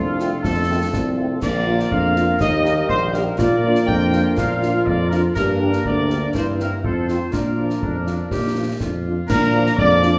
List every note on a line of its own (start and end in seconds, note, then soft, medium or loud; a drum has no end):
0.00 0.35 C2 medium
0.00 1.25 F3 medium
0.00 1.25 A3 medium
0.00 0.65 D4 medium
0.00 0.43 F4 medium
0.00 1.38 F4 medium
0.00 1.38 A4 medium
0.20 0.29 A3 medium
0.20 0.29 C4 medium
0.20 0.29 F4 medium
0.20 snare soft
0.43 0.84 F2 medium
0.43 1.13 A4 medium
0.43 concert bass drum medium
0.43 snare medium
0.68 0.77 A3 medium
0.68 0.78 C4 medium
0.68 0.78 F4 medium
0.92 1.34 C2 medium
0.92 1.39 C4 medium
0.92 concert bass drum medium
0.92 snare medium
1.18 1.27 A3 medium
1.18 1.27 C4 medium
1.18 1.26 F4 medium
1.41 1.83 A#1 medium
1.41 2.37 F3 medium
1.41 1.87 A#3 medium
1.41 3.35 A#3 medium
1.41 2.36 F4 medium
1.41 3.21 A#4 medium
1.41 1.88 D5 loud
1.41 concert bass drum medium
1.41 snare medium
1.41 crash soft
1.66 1.75 A#3 medium
1.66 1.75 F4 medium
1.80 snare medium
1.91 2.32 F2 medium
1.91 2.37 D4 medium
1.91 2.37 F5 medium
1.91 concert bass drum medium
2.15 2.24 A#3 medium
2.15 2.24 F4 medium
2.15 snare soft
2.40 2.81 D#2 medium
2.40 3.35 G3 medium
2.40 3.35 D#4 medium
2.40 3.21 G4 medium
2.40 2.86 D#5 loud
2.40 concert bass drum medium
2.40 snare medium
2.64 2.73 A#3 medium
2.64 2.74 G4 medium
2.64 snare medium
2.89 3.30 A#1 medium
2.89 3.12 C5 loud
2.89 concert bass drum medium
3.13 3.23 A#3 medium
3.13 3.22 G4 medium
3.13 3.38 A#4 medium
3.13 snare medium
3.38 3.79 A#2 medium
3.38 5.35 F3 medium
3.38 5.32 A#3 medium
3.38 3.91 F4 medium
3.38 5.36 F4 medium
3.38 5.31 A#4 medium
3.38 3.88 D5 loud
3.38 concert bass drum medium
3.38 snare medium
3.64 3.72 A#3 medium
3.64 3.73 D4 medium
3.64 3.72 F4 medium
3.75 snare medium
3.86 4.24 F2 medium
3.86 4.41 D4 medium
3.86 4.33 G5 loud
3.86 concert bass drum medium
4.13 4.22 A#3 medium
4.13 4.22 D4 medium
4.13 4.22 F4 medium
4.13 snare medium
4.36 4.78 A#2 medium
4.36 5.37 F4 medium
4.36 4.87 F5 medium
4.36 concert bass drum medium
4.36 snare medium
4.62 4.71 A#3 medium
4.62 4.71 D4 medium
4.62 4.72 F4 medium
4.62 snare soft
4.86 5.27 F2 medium
4.86 5.11 D5 medium
4.86 concert bass drum medium
5.10 5.20 A#3 medium
5.10 5.20 D4 medium
5.10 5.20 F4 medium
5.10 5.21 A#4 medium
5.10 snare soft
5.35 5.77 G2 medium
5.35 6.35 D3 medium
5.35 6.80 A#3 medium
5.35 6.30 D4 medium
5.35 5.82 G4 medium
5.35 5.81 A#4 loud
5.35 6.79 A#4 medium
5.35 concert bass drum medium
5.35 snare medium
5.35 crash soft
5.59 5.69 A#3 medium
5.59 5.69 D4 medium
5.59 5.68 G4 medium
5.73 snare soft
5.84 6.25 D2 medium
5.84 6.32 D4 medium
5.84 6.31 D5 medium
5.84 concert bass drum medium
6.09 6.18 A#3 medium
6.09 6.18 D4 medium
6.09 6.18 G4 medium
6.09 snare soft
6.33 6.74 G2 medium
6.33 6.81 E3 medium
6.33 6.84 E4 medium
6.33 6.71 E4 medium
6.33 6.46 C5 medium
6.33 concert bass drum medium
6.33 snare medium
6.58 6.68 A#3 soft
6.58 6.68 C4 medium
6.58 6.67 E4 medium
6.58 6.71 A#4 medium
6.58 snare soft
6.83 7.24 F2 medium
6.83 7.33 F3 medium
6.83 7.32 C4 medium
6.83 7.31 F4 medium
6.83 7.30 F4 medium
6.83 7.07 A4 medium
6.83 7.32 C5 medium
6.83 concert bass drum medium
7.08 7.17 F3 soft
7.08 7.17 C4 soft
7.08 7.17 F4 soft
7.08 7.32 C5 medium
7.08 snare soft
7.32 7.73 A#2 medium
7.32 9.01 F3 medium
7.32 9.01 D4 medium
7.32 7.73 F4 soft
7.32 8.76 A#4 medium
7.32 7.76 D5 soft
7.32 concert bass drum medium
7.32 snare medium
7.57 7.66 F3 soft
7.57 7.66 D4 soft
7.57 7.66 F4 soft
7.70 snare soft
7.80 8.22 F2 medium
7.80 8.27 D4 medium
7.80 concert bass drum medium
8.06 8.15 F3 soft
8.06 8.15 D4 soft
8.06 8.16 F4 soft
8.06 snare soft
8.30 8.71 A#2 medium
8.30 8.77 G4 medium
8.30 concert bass drum medium
8.30 snare medium
8.55 8.64 F3 soft
8.55 8.64 D4 soft
8.55 8.64 F4 soft
8.79 9.21 F2 medium
8.79 9.29 F4 medium
8.79 concert bass drum medium
8.79 snare medium
9.05 9.14 F3 soft
9.05 9.14 D4 soft
9.05 9.14 F4 soft
9.28 9.70 A#2 medium
9.28 10.19 F3 medium
9.28 10.19 D4 medium
9.28 9.75 D4 medium
9.28 9.74 A#4 loud
9.28 9.75 A#4 medium
9.28 9.78 A#5 medium
9.28 concert bass drum medium
9.28 snare medium
9.28 crash medium
9.53 9.62 F3 medium
9.53 9.62 D4 medium
9.53 9.62 F4 medium
9.66 snare medium
9.77 10.19 F2 medium
9.77 10.19 A#3 medium
9.77 10.19 D5 loud
9.77 10.19 D6 loud
9.77 concert bass drum medium
10.02 10.11 F3 medium
10.02 10.11 D4 medium
10.02 10.11 F4 medium
10.02 snare medium